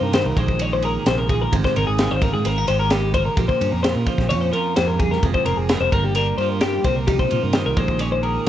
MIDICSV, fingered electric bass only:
0, 0, Header, 1, 2, 480
1, 0, Start_track
1, 0, Tempo, 462963
1, 1580, Time_signature, 4, 2, 24, 8
1, 8801, End_track
2, 0, Start_track
2, 0, Title_t, "Fingered electric bass"
2, 0, Program_c, 0, 33
2, 12, Note_on_c, 0, 43, 79
2, 221, Note_off_c, 0, 43, 0
2, 259, Note_on_c, 0, 36, 82
2, 362, Note_off_c, 0, 36, 0
2, 381, Note_on_c, 0, 34, 77
2, 994, Note_off_c, 0, 34, 0
2, 1100, Note_on_c, 0, 34, 85
2, 1509, Note_off_c, 0, 34, 0
2, 1587, Note_on_c, 0, 32, 86
2, 1686, Note_off_c, 0, 32, 0
2, 1827, Note_on_c, 0, 32, 99
2, 1927, Note_off_c, 0, 32, 0
2, 1949, Note_on_c, 0, 32, 83
2, 2150, Note_off_c, 0, 32, 0
2, 2192, Note_on_c, 0, 32, 82
2, 2391, Note_off_c, 0, 32, 0
2, 2424, Note_on_c, 0, 44, 80
2, 2524, Note_off_c, 0, 44, 0
2, 2543, Note_on_c, 0, 32, 92
2, 2746, Note_off_c, 0, 32, 0
2, 2782, Note_on_c, 0, 32, 85
2, 3394, Note_off_c, 0, 32, 0
2, 3501, Note_on_c, 0, 34, 86
2, 3602, Note_off_c, 0, 34, 0
2, 3744, Note_on_c, 0, 43, 87
2, 3844, Note_off_c, 0, 43, 0
2, 3868, Note_on_c, 0, 41, 77
2, 4069, Note_off_c, 0, 41, 0
2, 4099, Note_on_c, 0, 46, 76
2, 4201, Note_off_c, 0, 46, 0
2, 4340, Note_on_c, 0, 34, 77
2, 4462, Note_on_c, 0, 41, 85
2, 4478, Note_off_c, 0, 34, 0
2, 4665, Note_off_c, 0, 41, 0
2, 4945, Note_on_c, 0, 41, 81
2, 5352, Note_off_c, 0, 41, 0
2, 5422, Note_on_c, 0, 29, 86
2, 5524, Note_off_c, 0, 29, 0
2, 5656, Note_on_c, 0, 29, 98
2, 5760, Note_off_c, 0, 29, 0
2, 5774, Note_on_c, 0, 29, 80
2, 5981, Note_off_c, 0, 29, 0
2, 6013, Note_on_c, 0, 29, 80
2, 6118, Note_off_c, 0, 29, 0
2, 6142, Note_on_c, 0, 31, 78
2, 6551, Note_off_c, 0, 31, 0
2, 6611, Note_on_c, 0, 43, 76
2, 7024, Note_off_c, 0, 43, 0
2, 7097, Note_on_c, 0, 36, 75
2, 7508, Note_off_c, 0, 36, 0
2, 7587, Note_on_c, 0, 46, 89
2, 7687, Note_off_c, 0, 46, 0
2, 7704, Note_on_c, 0, 43, 71
2, 7908, Note_off_c, 0, 43, 0
2, 7942, Note_on_c, 0, 36, 77
2, 8044, Note_off_c, 0, 36, 0
2, 8059, Note_on_c, 0, 34, 86
2, 8675, Note_off_c, 0, 34, 0
2, 8801, End_track
0, 0, End_of_file